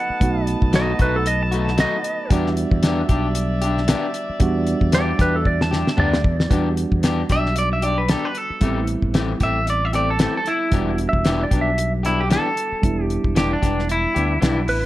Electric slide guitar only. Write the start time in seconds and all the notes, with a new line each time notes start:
Already playing: F#5
0.76 D#5
1.02 B4
1.16 A4
1.27 D#5
1.43 A5
1.80 D#5
4.95 D5
5.21 B4
5.36 A4
5.47 D5
5.62 A5
6.00 D5
11.09 E5
11.43 D5
11.61 E5
14.69 B4